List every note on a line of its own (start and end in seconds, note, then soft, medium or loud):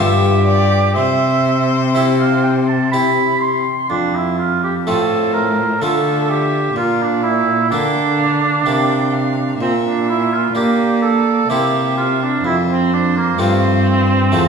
0.00 0.91 G2 medium
0.00 0.97 G2 medium
0.00 0.91 B3 soft
0.00 0.92 F4 soft
0.00 0.92 G4 soft
0.00 0.96 G4 medium
0.00 0.45 E5 medium
0.47 0.94 D5 medium
0.94 3.70 C3 medium
0.94 3.67 C3 medium
0.94 2.89 C5 medium
0.94 1.84 E5 medium
1.94 2.65 C4 soft
1.94 2.66 E4 soft
1.94 2.66 G4 soft
1.94 2.05 E5 medium
2.19 2.43 F5 medium
2.44 2.55 G5 medium
2.68 2.91 A5 medium
2.92 3.63 C4 soft
2.92 3.64 E4 soft
2.92 3.64 G4 soft
2.92 3.40 B5 medium
3.40 3.89 C6 medium
3.90 4.82 F2 soft
3.90 4.88 F2 medium
3.90 4.17 D4 medium
4.15 4.38 E4 medium
4.39 4.62 F4 medium
4.63 4.74 G4 medium
4.86 5.83 A2 medium
4.86 5.78 A2 soft
4.86 5.55 A3 soft
4.86 5.56 C4 soft
4.86 5.56 F4 soft
4.86 5.33 A4 medium
4.86 5.77 C5 soft
5.33 5.83 A#4 medium
5.81 6.76 D3 medium
5.81 6.72 D3 soft
5.81 6.72 A3 soft
5.81 6.72 D4 soft
5.81 6.73 F4 soft
5.81 6.31 A4 medium
5.81 6.77 E5 medium
6.30 6.76 G4 medium
6.76 7.67 A#2 soft
6.76 7.73 A#2 medium
6.76 7.03 F4 medium
6.76 7.70 D5 soft
7.02 7.23 D4 medium
7.23 7.70 E4 medium
7.70 8.66 D3 medium
7.70 8.62 D3 soft
7.70 8.40 A#3 soft
7.70 9.56 D4 medium
7.70 8.40 D4 soft
7.70 8.20 G5 medium
8.19 8.67 F5 medium
8.65 9.56 C3 soft
8.65 9.59 C3 medium
8.65 9.34 A#3 soft
8.65 9.34 D4 soft
8.65 9.15 G5 medium
9.13 9.59 F5 medium
9.59 10.53 A#2 medium
9.59 10.51 A#2 soft
9.59 9.72 C4 medium
9.59 10.53 E5 medium
9.86 10.08 D4 soft
10.09 10.34 E4 medium
10.33 10.55 F4 medium
10.55 11.46 A#3 soft
10.55 11.48 A#3 medium
10.55 11.23 D4 soft
10.55 11.02 G4 medium
10.55 11.51 D5 medium
11.02 11.48 A4 medium
11.49 12.42 C3 medium
11.49 12.40 C3 soft
11.49 12.40 A#3 soft
11.49 12.40 C4 soft
11.49 12.41 E4 soft
11.49 11.96 G4 medium
11.49 12.43 E5 medium
11.97 12.20 F4 medium
12.22 12.44 D4 medium
12.43 13.36 F2 medium
12.43 13.34 F2 soft
12.43 12.56 E4 medium
12.43 14.28 C5 medium
12.72 12.93 C4 medium
12.93 13.15 D4 medium
13.17 13.39 A#3 medium
13.38 14.33 G2 medium
13.38 14.28 G2 soft
13.38 14.06 A3 soft
13.38 14.06 C4 soft
13.38 14.48 C4 medium
13.38 14.06 F4 soft
14.31 14.48 E2 medium
14.31 14.48 E2 soft
14.31 14.48 A3 soft
14.31 14.48 C4 soft
14.31 14.48 F4 soft
14.31 14.48 A4 medium